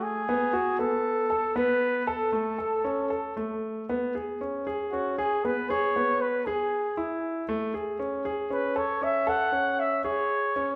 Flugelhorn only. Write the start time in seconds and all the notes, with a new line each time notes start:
0.03 G#4
0.78 A4
1.56 B4
2.07 A4
4.92 F#4
5.18 G#4
5.45 B4
5.70 C#5
6.21 B4
6.46 G#4
8.53 B4
8.77 C#5
9.04 E5
9.29 F#5
9.80 E5
10.05 C#5